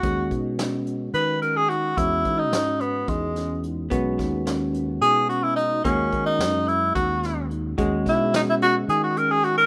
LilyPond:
<<
  \new Staff \with { instrumentName = "Tenor saxophone" } { \time 7/8 \key gis \minor \tempo 4 = 108 fis'8 r4. b'8 ais'16 gis'16 fis'8 | e'8. dis'8. b8 gis4 r8 | r2 gis'8 fis'16 e'16 dis'8 | cis'8. dis'8. e'8 fis'4 r8 |
r8 e'8 dis'16 e'16 fis'8 gis'16 fis'16 ais'16 gis'16 fis'16 ais'16 | }
  \new Staff \with { instrumentName = "Vibraphone" } { \time 7/8 \key gis \minor r8 dis'8 cis'4 dis'8 cis'8 dis'8 | r8 dis'8 cis'4 dis'8 cis'8 dis'8 | r8 dis'8 cis'4 dis'8 cis'8 dis'8 | r8 dis'8 cis'4 dis'8 cis'8 dis'8 |
r8 dis'8 cis'4 dis'8 cis'8 dis'8 | }
  \new Staff \with { instrumentName = "Tine electric piano" } { \time 7/8 \key gis \minor <gis cis' fis'>2.~ <gis cis' fis'>8 | <gis cis' fis'>2.~ <gis cis' fis'>8 | <gis cis' fis'>2.~ <gis cis' fis'>8 | <gis cis' fis'>2.~ <gis cis' fis'>8 |
<gis cis' fis'>2.~ <gis cis' fis'>8 | }
  \new Staff \with { instrumentName = "Hollow-body jazz guitar" } { \time 7/8 \key gis \minor r2. r8 | r2. r8 | b2.~ b8 | ais2.~ ais8 |
gis2.~ gis8 | }
  \new Staff \with { instrumentName = "Fretless electric bass" } { \clef bass \time 7/8 \key gis \minor dis,8 b,4. dis4. | e,8 e8 gis,4 e,4. | b,,8 dis,4. b,4. | dis,8 dis8 fis,4 dis,4. |
dis,8 b,4. dis4. | }
  \new DrumStaff \with { instrumentName = "Drums" } \drummode { \time 7/8 <hh bd>8 <hh bd>8 <hh sn>8 hh8 hh8 hh8 hh8 | <hh bd>8 <hh bd>8 <hh sn>8 hh8 <hh bd>8 <hh sn>8 hh8 | <hh bd>8 <hh bd sn>8 <hh sn>8 hh8 hh8 hh8 hh8 | <hh bd>8 <hh bd>8 <hh sn>8 hh8 <hh bd>8 <hh sn>8 hh8 |
<hh bd>8 <hh bd sn>8 <hh sn>8 hh8 hh8 hh8 hh8 | }
>>